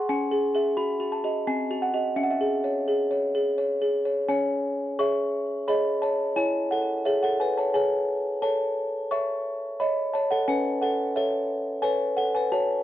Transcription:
0.09 C#4 G#5
0.32 G#4
0.55 G#4 E5
0.77 F#4 B5
1.00 F#4
1.12 A5
1.24 F#4 D#5
1.47 C4 G#5
1.71 F#4
1.82 F#5
1.94 F#4 D#5
2.16 C#4 E5
2.23 F#5
2.31 E5
2.41 G#4
2.64 C#5
2.88 G#4
3.11 C#5
3.35 G#4
3.58 C#5
3.82 G#4
4.05 C#5
4.29 C#4 C#5 G#5
4.99 G#4 C#5 E5 C#6
5.68 G#4 C#5 D#5 B5
6.02 C#5 A5
6.36 E4 C#5 G#5
6.71 A4 F#5
7.05 G#4 C#5 E5
7.23 A4 F#5
7.40 B4 G#5
7.58 C#5 A5
7.74 G#4 C#5 G#5
8.42 A4 C#5 A5
9.11 C#5 E5 C#6
9.80 C#5 D#5 B5
10.14 C#5 A5
10.31 A4 F#5
10.48 C#4 B4 G#5
10.81 A4 F#5
11.16 A4 C#5 E5
11.82 A4 B4 C#5 G#5
12.17 A4 F#5
12.35 B4 G#5
12.52 F#4 C#5 A5

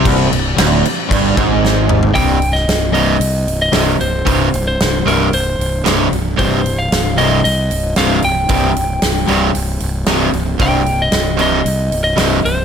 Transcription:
Already playing: C4 G4 D5
0.04 C1 C2, kick, crash
0.30 C1 C2, crash
0.56 D1 D2, snare, crash
0.85 crash
1.09 G1 G2, kick, crash
1.13 G2
1.35 G#1 G#2, kick, crash
1.65 snare
1.89 mid tom
2.03 floor tom
2.14 C1 C2 G2 C3 G5, kick, open hi-hat
2.42 open hi-hat
2.53 D#5, snare
2.68 C1, snare, open hi-hat
2.92 C2 G2 C3 D#5, open hi-hat
3.20 C2, open hi-hat
3.48 C1, open hi-hat
3.62 D#5
3.72 C1 C2 G2 C3, snare, open hi-hat
4.01 C1 C5, open hi-hat
4.25 C1 C2 G2 C3, kick, open hi-hat
4.54 C1, open hi-hat
4.68 C5
4.80 C1, snare, open hi-hat
5.06 C1 C2 G2 C3 A#4, open hi-hat
5.33 C1 C5, open hi-hat
5.59 C1, open hi-hat
5.86 C1 C2 G2 C3, snare, open hi-hat
6.13 C1, open hi-hat
6.38 C1 C2 G2 C3 C5, kick, open hi-hat
6.66 open hi-hat
6.79 F5
6.92 C1, snare, open hi-hat
7.18 C2 G2 C3 D#5, open hi-hat
7.44 C2 D#5, open hi-hat
7.71 C1, open hi-hat
7.96 C1 C2 G2 C3 F5, snare, open hi-hat
8.22 C1 G5, open hi-hat
8.49 C1 C2 G2 C3, kick, open hi-hat
8.76 C1, open hi-hat
9.02 C1, snare, open hi-hat
9.26 C1 C2 G2 C3, open hi-hat
9.55 C1, open hi-hat
9.80 C1, open hi-hat
10.06 C1 C2 G2 C3, snare, open hi-hat
10.33 C1, open hi-hat
10.60 C1 C2 G2 C3 G5, kick, open hi-hat
10.86 open hi-hat
11.02 D#5
11.12 C1, snare, open hi-hat
11.39 C2 G2 C3 D#5, open hi-hat
11.65 C2, open hi-hat
11.92 C1, open hi-hat
12.04 D#5
12.17 C1 C2 G2 C3, snare, open hi-hat
12.45 C1 C5, open hi-hat

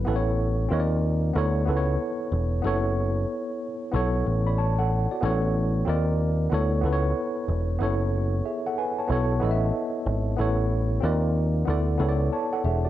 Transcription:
0.05 A1 B3 E4 A4
0.09 B4
0.16 C#5
0.69 D#2 C4 F4 A#4
0.73 C#5
0.80 D5
1.34 D2 B3 E4 A4
1.38 C#5
1.66 C#2 B3 E4 A4
1.70 B4
1.77 C#5
2.32 E1
2.62 F#1 B3 E4 A4
2.67 C#5
3.92 B1 B3 E4 A4
3.96 C#5
4.26 A1
4.47 D5 B5
4.58 C#5 A5
4.79 A4 F#5
5.11 F#4 D5
5.21 A1 B3 E4 A4
5.25 C#5
5.85 D#2 C4 F4 A#4
5.89 D5
6.50 D2 B3 E4 A4
6.54 C#5
6.81 C#2 B3 E4 A4
6.86 B4
6.93 C#5
7.48 E1
7.79 F#1 B3 E4 A4
7.83 C#5
8.46 G#4 E5
8.67 A4 F#5
8.78 B4 G#5
8.99 C#5 A5
9.08 B1 B3 E4 A4
9.12 C#5
9.40 A1 B3 E4 A4
9.45 D#5
9.51 E5
10.06 G#1
10.37 A1 B3 E4 A4
10.41 C#5
11.00 D#2 C4 F4 A#4
11.05 D5
11.65 D2 B3 E4 A4
11.70 D5
11.98 C#2 B3 E4 A4
12.02 C#5
12.09 D5
12.33 C#5 A5
12.53 A4 F#5
12.64 E1 G#4 E5
12.85 F#4 D5

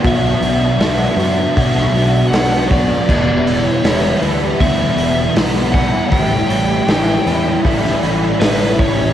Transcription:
0.03 B1 B2 F#3 B3 D4 F#4, kick, open hi-hat
0.07 E5
0.41 B1 B3 D4 F#4, open hi-hat
0.78 B1 F#3, snare, open hi-hat
0.82 B3 D4 F#4
1.16 F#2 F#4, open hi-hat
1.21 B3 D4
1.56 B1 B2 F#3 B3 D4 F#4, kick, open hi-hat
1.77 snare
1.93 B1 D4 F#4, open hi-hat
1.97 B3
2.28 B1 F#5
2.33 F#3 B3 D4 F#4, snare, open hi-hat
2.68 F#4 D5, kick, open hi-hat
2.73 B3 D4
3.09 E1 E2 B2 E3 G3 B3 E4, kick, crash
3.47 E3 G3 B3 E4, open hi-hat
3.65 C#5
3.84 E1 E3 G3 B3 E4, snare, open hi-hat
4.22 D2 E3 G3 B3 E4, open hi-hat
4.60 D2 E2 B2 E3 G3 B3 E4 E5, kick, open hi-hat
4.97 E1 E3 G3 B3 E4, open hi-hat
5.36 B1 E3 G3 B3 E4, snare, open hi-hat
5.72 E3 G3 B3 E4 F#5, kick, open hi-hat
6.09 A1 A2 E3 G3 C#4 E4 G5, kick, open hi-hat
6.47 A1 G3 C#4 E4, open hi-hat
6.87 A1 E3 G3 C#4 E4, snare, open hi-hat
7.26 E2 G3 C#4 E4, open hi-hat
7.65 A1 A2 E3 G3 C#4 E4, kick, open hi-hat
7.85 snare
8.03 A1 G3 C#4 E4, open hi-hat
8.40 A1 E3 G3 C#4 E4 B4, snare, open hi-hat
8.79 G3 C#4 E4 C#5, kick, open hi-hat

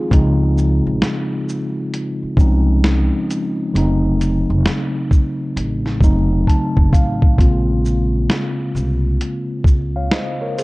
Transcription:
Already playing: G#3 C4 D#4 F4 G#4
0.10 C#2 C#3 F3 G#3 C4 D#4, kick, closed hi-hat
0.58 shaker
0.87 A#1
1.02 snare, closed hi-hat
1.49 shaker
1.94 closed hi-hat
2.23 muted upright bass stroke
2.37 C2 F3 G#3 C4 C#4 D#4, kick, shaker
2.84 snare, closed hi-hat
3.31 closed hi-hat, shaker
3.74 F1 C#3 F#3 A3 C4 D#4, closed hi-hat
4.21 closed hi-hat, shaker
4.50 F1
4.66 snare, closed hi-hat
5.11 kick, shaker
5.56 A1, closed hi-hat
5.86 snare
6.00 F1 C#3 F#3 A3 C4 D#4, kick, shaker
6.47 A5, kick, closed hi-hat
6.77 F#1, kick
6.93 A1 F5, kick, closed hi-hat, shaker
7.22 kick
7.37 A#1 C3 G#3 A#3 C4 F4, kick, closed hi-hat
7.43 C#3
7.85 shaker
8.30 snare, closed hi-hat
8.75 C2, shaker
9.21 closed hi-hat
9.64 C#2, kick, shaker
9.96 C#5 F5
10.11 C5 D#5, snare, closed hi-hat
10.41 A#4 C#5
10.58 G#4 C5, closed hi-hat, shaker

